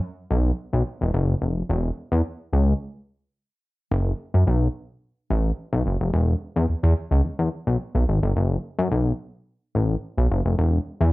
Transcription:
0.30 0.51 B1 loud
0.73 0.83 B1 medium
1.01 1.11 E1 loud
1.14 1.35 F#1 loud
1.42 1.62 F1 medium
1.70 1.90 E1 loud
2.12 2.22 E2 loud
2.53 2.74 C#2 medium
3.92 4.12 F#1 loud
4.34 4.44 F#2 medium
4.47 4.68 B1 medium
5.30 5.51 A1 loud
5.73 5.83 B1 loud
5.86 5.97 F#1 medium
6.01 6.10 F1 loud
6.14 6.34 E1 loud
6.56 6.66 E2 loud
6.69 6.75 E2 soft
6.83 6.93 E2 loud
7.11 7.21 C#2 loud
7.39 7.49 E2 medium
7.67 7.77 B1 medium
7.95 8.05 B1 medium
8.08 8.19 G#1 medium
8.23 8.33 G1 loud
8.36 8.57 F#1 loud
8.78 8.88 F#2 loud
8.91 9.12 B1 loud
9.75 9.96 A1 medium
10.17 10.27 B1 medium
10.30 10.42 F#1 loud
10.45 10.55 F1 loud
10.58 10.79 E1 loud
11.01 11.11 E2 loud

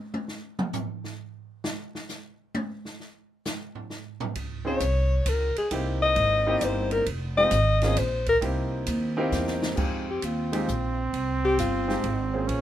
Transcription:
0.14 high tom medium
0.28 snare soft
0.59 mid tom loud
0.73 floor tom medium
0.73 hi-hat pedal medium
1.04 snare soft
1.64 snare loud
1.95 snare medium
2.09 snare soft
2.09 hi-hat pedal medium
2.55 high tom loud
2.85 snare soft
3.00 snare soft
3.45 snare medium
3.45 hi-hat pedal medium
3.75 floor tom medium
3.90 snare soft
4.20 floor tom loud
4.35 4.79 C#2 medium
4.35 kick soft
4.35 ride medium
4.65 4.79 C4 medium
4.65 4.79 C#4 medium
4.65 4.79 D#4 medium
4.65 4.80 F4 medium
4.65 4.80 G#4 medium
4.65 5.31 C#5 loud
4.80 5.25 C2 medium
4.80 kick soft
4.80 hi-hat pedal medium
4.80 ride medium
5.26 5.54 C#2 medium
5.26 5.57 A#4 medium
5.26 kick soft
5.26 hi-hat pedal medium
5.26 ride medium
5.56 5.71 G#4 loud
5.56 muted upright bass stroke soft
5.56 ride medium
5.71 6.15 C2 medium
5.71 6.41 A#3 medium
5.71 6.41 C4 medium
5.71 6.41 D#4 medium
5.71 6.41 E4 medium
5.71 6.41 G4 medium
5.71 kick soft
5.71 ride medium
6.03 6.66 D#5 loud
6.16 6.60 G#1 loud
6.16 ride medium
6.46 7.04 A#3 medium
6.46 7.04 C4 medium
6.46 7.04 D#4 medium
6.46 7.04 E4 medium
6.46 7.04 G4 medium
6.61 7.05 G1 medium
6.61 6.91 C5 loud
6.61 kick soft
6.61 hi-hat pedal medium
6.61 ride medium
6.91 7.06 A#4 loud
6.91 ride medium
7.06 7.50 F1 medium
7.06 kick soft
7.06 ride medium
7.37 7.51 G#3 medium
7.37 7.50 C4 medium
7.37 7.51 D#4 medium
7.37 7.51 F4 medium
7.37 7.51 G4 medium
7.37 8.00 D#5 loud
7.51 7.95 G#1 loud
7.51 kick soft
7.51 hi-hat pedal medium
7.51 ride medium
7.82 7.96 A#3 medium
7.82 7.96 C4 medium
7.82 7.96 C#4 medium
7.82 7.96 F4 medium
7.82 7.97 G#4 medium
7.82 snare medium
7.82 ride soft
7.97 8.40 A#1 medium
7.97 8.28 C5 loud
7.97 kick soft
7.97 hi-hat pedal medium
7.97 ride medium
8.26 8.37 A#4 loud
8.26 kick soft
8.26 ride soft
8.41 8.86 C2 medium
8.41 9.11 A#3 medium
8.41 9.11 C4 medium
8.41 9.11 D#4 medium
8.41 9.11 E4 medium
8.41 9.11 G4 medium
8.41 kick soft
8.41 ride medium
8.86 9.31 D#2 loud
8.86 kick soft
8.86 hi-hat pedal medium
8.86 ride medium
9.17 9.74 A#3 loud
9.17 9.74 C4 medium
9.17 9.75 D#4 medium
9.17 9.74 E4 medium
9.17 9.75 G4 medium
9.32 9.76 E2 loud
9.32 snare medium
9.32 hi-hat pedal medium
9.47 snare medium
9.62 snare loud
9.76 10.21 F2 medium
9.76 10.04 G#3 medium
9.76 10.04 C4 medium
9.76 12.49 C4 medium
9.76 10.04 D#4 soft
9.76 10.04 F4 medium
9.76 10.05 G4 medium
9.76 kick medium
9.76 crash medium
10.10 10.27 G4 medium
10.22 10.66 D#2 medium
10.22 10.99 F4 medium
10.22 kick soft
10.22 hi-hat pedal medium
10.22 ride medium
10.52 10.66 G#3 medium
10.52 10.66 C4 medium
10.52 10.66 D#4 medium
10.52 10.66 F4 medium
10.52 10.67 G4 medium
10.52 ride medium
10.68 11.12 A#1 loud
10.68 kick soft
10.68 hi-hat pedal medium
11.13 11.57 C2 medium
11.13 kick soft
11.13 ride medium
11.45 11.58 G4 loud
11.58 12.02 G1 loud
11.58 12.30 F4 medium
11.58 kick soft
11.58 hi-hat pedal soft
11.58 ride medium
11.87 12.01 G#3 medium
11.87 12.01 C4 medium
11.87 12.01 D#4 medium
11.87 12.02 F4 medium
11.87 12.02 G4 medium
11.87 snare soft
12.03 12.47 G#1 medium
12.03 kick soft
12.03 ride medium
12.33 12.61 A#3 medium
12.33 12.61 C#4 medium
12.33 12.61 F4 medium
12.33 12.61 G#4 medium
12.33 12.61 C5 medium
12.48 12.61 A#1 medium
12.48 12.61 C#4 loud
12.48 kick soft
12.48 ride medium

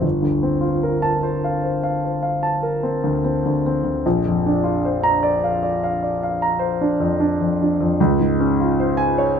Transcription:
0.01 4.00 G1 soft
0.22 0.55 D2 soft
0.43 0.75 C4 soft
0.61 0.95 F4 soft
0.83 1.16 A#4 soft
1.02 1.36 A5 medium
1.23 1.57 C5 medium
1.44 1.77 F5 soft
1.64 1.97 C5 soft
1.83 2.16 F5 soft
2.05 2.37 C5 soft
2.23 2.56 F5 soft
2.43 2.76 A5 soft
2.63 2.96 A#4 soft
2.83 3.16 C4 soft
3.04 3.36 D2 soft
3.25 3.56 C4 soft
3.45 3.77 D2 soft
3.66 3.98 C4 soft
3.84 4.05 D2 soft
4.06 7.95 A#1 medium
4.26 4.58 F2 soft
4.46 4.78 D4 soft
4.64 4.96 F4 soft
4.85 5.16 C5 soft
5.03 5.36 A#5 medium
5.23 5.55 D5 medium
5.44 5.76 F5 medium
5.63 5.95 D5 soft
5.84 6.15 F5 medium
6.03 6.35 D5 soft
6.23 6.55 F5 soft
6.42 6.74 A#5 medium
6.59 6.92 C5 medium
6.81 7.13 D4 soft
7.00 7.32 F2 soft
7.20 7.51 D4 soft
7.41 7.71 F2 soft
7.61 7.92 D4 soft
7.80 7.99 F2 soft
8.00 9.40 C#2 medium
8.20 8.51 G#2 soft
8.40 8.71 C#4 soft
8.60 8.91 F4 soft
8.80 9.11 C5 medium
8.97 9.30 G#5 medium
9.18 9.40 C#5 medium

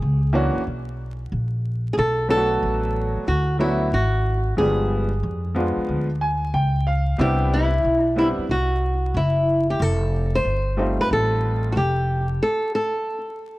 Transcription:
0.00 0.53 C#2 loud
0.00 1.17 G#4 medium
0.33 0.59 E3 medium
0.33 0.59 A#3 medium
0.33 0.60 C#4 medium
0.33 0.60 D4 medium
0.33 0.60 F#4 medium
0.56 muted upright bass stroke soft
0.67 1.29 B1 medium
1.32 1.94 A#1 medium
1.93 1.98 G#4 medium
1.98 2.59 B1 medium
1.98 2.28 A4 medium
2.28 3.22 F#3 medium
2.28 3.23 A3 medium
2.28 3.23 B3 medium
2.28 3.23 D4 medium
2.28 2.39 E4 medium
2.28 3.24 A4 loud
2.37 3.27 F#4 medium
2.63 3.14 A1 medium
3.16 muted upright bass stroke soft
3.27 3.90 D2 medium
3.27 3.58 F#4 medium
3.59 3.85 F#3 medium
3.59 3.86 A3 medium
3.59 3.86 B3 medium
3.59 3.86 D4 medium
3.59 3.91 E4 medium
3.59 3.86 F#4 medium
3.93 4.55 G#1 medium
3.93 4.58 F#4 medium
4.57 5.20 G1 medium
4.57 5.07 F3 medium
4.57 5.08 G3 medium
4.57 5.07 G#3 soft
4.57 5.08 B3 medium
4.57 5.08 D4 medium
4.57 6.50 G#4 medium
5.23 5.74 F2 medium
5.54 6.05 F3 medium
5.54 6.05 G#3 medium
5.54 6.05 B3 medium
5.54 6.05 D4 medium
5.54 6.06 F4 medium
5.77 muted upright bass stroke soft
5.88 6.50 D2 medium
6.21 6.52 G#5 medium
6.54 7.16 C#2 medium
6.54 6.84 G5 medium
6.87 7.17 F5 medium
7.18 7.81 C2 loud
7.18 7.68 G3 medium
7.18 7.68 B3 medium
7.18 7.69 C4 medium
7.18 7.69 D4 medium
7.18 7.69 E4 medium
7.18 7.54 G4 medium
7.53 8.03 E4 medium
7.84 8.35 B1 medium
8.03 8.17 D4 medium
8.16 8.42 G3 medium
8.16 8.42 B3 medium
8.16 8.43 C4 medium
8.16 8.43 D4 medium
8.16 8.43 E4 medium
8.16 8.27 E4 medium
8.38 muted upright bass stroke soft
8.49 9.11 C2 medium
8.49 9.17 F#4 medium
9.14 9.76 F#1 medium
9.14 9.66 E4 medium
9.70 9.82 G4 medium
9.80 10.42 F1 loud
9.80 10.35 A4 medium
10.35 11.00 C5 loud
10.45 10.96 G1 medium
10.77 11.70 G3 medium
10.77 11.71 A3 medium
10.77 11.71 C4 medium
10.77 11.71 D#4 medium
10.77 11.72 F4 medium
10.99 11.12 B4 loud
10.99 muted upright bass stroke soft
11.11 11.72 A1 medium
11.11 11.72 A4 medium
11.72 12.38 F1 medium
11.72 11.76 F#4 medium
11.77 12.26 G4 medium
12.43 12.74 A4 loud
12.75 13.59 A4 loud

